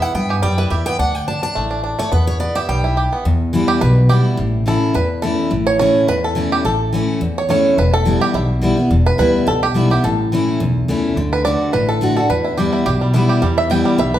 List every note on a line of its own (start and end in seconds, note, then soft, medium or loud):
0.00 0.14 B3 medium
0.00 0.40 E4 medium
0.00 0.14 F#5 loud
0.14 0.39 G2 medium
0.14 0.55 B3 medium
0.14 0.30 G5 medium
0.30 0.69 G4 medium
0.30 0.42 G#5 loud
0.42 0.67 F#2 medium
0.42 0.83 G3 medium
0.42 0.58 G5 loud
0.58 0.97 E4 medium
0.58 0.71 B4 medium
0.70 0.95 E2 medium
0.70 0.99 G4 medium
0.70 0.86 E5 medium
0.86 0.99 B3 medium
0.86 0.99 G5 loud
0.99 1.37 D2 medium
0.99 1.27 D4 medium
0.99 1.15 F#5 loud
1.15 1.27 G5 loud
1.28 1.42 D4 medium
1.28 1.42 A5 medium
1.43 1.69 D4 medium
1.43 1.81 A5 loud
1.55 1.94 A1 medium
1.55 1.96 A3 medium
1.71 1.82 D4 medium
1.84 2.12 D4 medium
1.99 2.12 A3 medium
1.99 2.12 C#5 loud
2.12 2.50 E2 medium
2.12 2.39 B3 medium
2.12 2.27 B4 medium
2.27 2.39 C#5 loud
2.40 2.81 B3 medium
2.40 2.55 D5 medium
2.55 2.94 G4 medium
2.55 2.68 E5 loud
2.69 3.06 B1 medium
2.69 3.09 G3 medium
2.69 3.15 G5 loud
2.84 3.23 E4 medium
2.97 3.25 G4 medium
3.13 3.25 B3 medium
3.25 3.63 E2 medium
3.25 3.79 E2 medium
3.53 3.80 E3 medium
3.53 3.81 G3 medium
3.53 3.81 B3 medium
3.53 3.81 E4 loud
3.68 3.80 G4 medium
3.81 4.20 B1 medium
3.81 4.36 B2 medium
3.81 4.11 B4 loud
4.09 4.37 E3 medium
4.09 4.37 G3 medium
4.09 4.37 B3 medium
4.09 4.38 E4 medium
4.09 4.24 G4 medium
4.37 4.76 A1 medium
4.37 4.92 A2 medium
4.66 4.93 E3 medium
4.66 4.94 A3 medium
4.66 4.94 C#4 medium
4.66 4.94 E4 loud
4.66 4.93 A4 medium
4.94 5.49 E2 medium
4.94 5.33 E2 medium
4.94 5.22 B4 loud
5.22 5.50 E3 medium
5.22 5.50 A3 medium
5.22 5.50 C#4 medium
5.22 5.51 E4 medium
5.22 5.37 A4 medium
5.51 5.89 A1 medium
5.51 6.05 A2 medium
5.67 5.78 C#5 loud
5.79 6.06 E3 medium
5.79 6.07 A3 medium
5.79 6.07 C#4 loud
5.79 6.08 E4 loud
5.79 6.08 C#5 loud
6.08 6.46 E2 medium
6.08 6.62 E2 loud
6.08 6.24 B4 medium
6.24 6.53 A4 medium
6.35 6.63 E3 medium
6.35 6.63 A3 medium
6.35 6.63 C#4 medium
6.35 6.64 E4 medium
6.52 6.65 G4 medium
6.64 7.02 A1 medium
6.64 7.18 A2 medium
6.64 6.91 A4 medium
6.93 7.20 E3 medium
6.93 7.20 A3 medium
6.93 7.20 C#4 loud
6.93 7.21 E4 medium
7.21 7.75 E2 medium
7.21 7.59 E2 medium
7.38 7.49 C#5 loud
7.49 7.76 E3 medium
7.49 7.76 A3 medium
7.49 7.77 C#4 loud
7.49 7.77 E4 loud
7.49 7.78 C#5 loud
7.78 8.15 E1 medium
7.78 8.32 E2 medium
7.78 7.92 B4 medium
7.94 8.22 A4 loud
8.05 8.32 E3 medium
8.05 8.33 G3 medium
8.05 8.33 B3 loud
8.05 8.34 E4 medium
8.21 8.35 G4 medium
8.34 8.72 B1 medium
8.34 8.88 B2 medium
8.34 8.61 E4 medium
8.61 8.77 E3 medium
8.61 8.77 G3 medium
8.61 8.77 B3 medium
8.61 8.76 E4 medium
8.77 8.91 B3 medium
8.77 8.90 E4 medium
8.90 9.09 E1 loud
8.90 9.44 E2 medium
9.06 9.18 B4 loud
9.18 9.43 D2 medium
9.18 9.45 E3 medium
9.18 9.46 G3 medium
9.18 9.46 B3 medium
9.18 9.47 E4 medium
9.18 9.48 B4 loud
9.47 9.71 C#2 medium
9.47 10.01 B2 medium
9.47 9.63 A4 loud
9.63 9.89 G4 medium
9.74 9.99 B1 medium
9.74 9.89 E3 medium
9.74 9.90 G3 medium
9.74 9.90 B3 medium
9.74 9.89 E4 medium
9.90 10.04 B3 medium
9.90 10.03 E4 medium
9.90 10.04 G4 medium
10.03 10.41 A1 medium
10.03 10.58 A2 medium
10.03 10.30 A4 medium
10.32 10.59 E3 medium
10.32 10.59 A3 medium
10.32 10.60 C#4 medium
10.32 10.60 E4 loud
10.60 10.84 B1 medium
10.60 11.14 E2 medium
10.88 11.12 C#2 medium
10.88 11.15 E3 medium
10.88 11.16 A3 medium
10.88 11.16 C#4 medium
10.88 11.16 E4 medium
11.16 11.54 D2 loud
11.16 11.44 D3 medium
11.33 11.44 B4 medium
11.45 11.72 D3 medium
11.45 11.72 A3 medium
11.45 11.73 D4 medium
11.45 11.73 F#4 loud
11.45 11.73 D5 loud
11.73 12.11 A1 medium
11.73 12.27 A2 medium
11.73 11.89 B4 medium
11.89 12.15 A4 medium
12.01 12.16 D3 medium
12.01 12.16 A3 medium
12.01 12.17 D4 medium
12.01 12.16 F#4 medium
12.16 12.30 D4 medium
12.16 12.29 F#4 medium
12.16 12.29 A4 medium
12.30 12.67 E2 medium
12.30 12.84 E2 medium
12.30 12.56 B4 medium
12.44 12.71 E4 medium
12.57 12.85 E3 medium
12.57 12.85 G3 medium
12.57 12.85 B3 medium
12.57 12.86 E4 loud
12.57 12.85 G4 medium
12.73 13.12 E4 medium
12.86 13.24 B1 medium
12.86 13.40 B2 loud
12.86 13.26 G4 medium
13.01 13.40 G3 medium
13.14 13.41 E3 medium
13.14 13.41 G3 medium
13.14 13.42 B3 medium
13.14 13.55 E4 medium
13.14 13.42 E4 loud
13.29 13.68 G4 medium
13.42 13.96 E2 loud
13.42 13.80 E2 medium
13.42 13.83 G3 medium
13.58 13.70 E5 loud
13.70 13.97 E3 loud
13.70 13.98 G3 medium
13.70 13.98 B3 loud
13.70 13.98 E4 loud
13.70 13.99 G5 loud
13.85 14.19 G3 medium
13.98 14.19 B1 medium
13.98 14.19 B2 loud
13.98 14.15 E5 loud
14.14 14.19 B4 medium